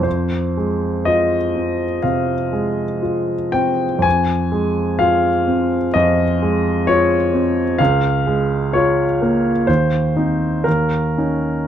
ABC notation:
X:1
M:4/4
L:1/8
Q:1/4=62
K:Fm
V:1 name="Upright piano"
c2 e2 f3 g | a2 f2 e2 d2 | [K:Bbdor] f2 d2 c2 B2 |]
V:2 name="Upright piano"
F,, A, F C C, A, F C | F,, A, F C F,, A, F C | [K:Bbdor] D,, A, F B, E,, [CE] E,, [DE] |]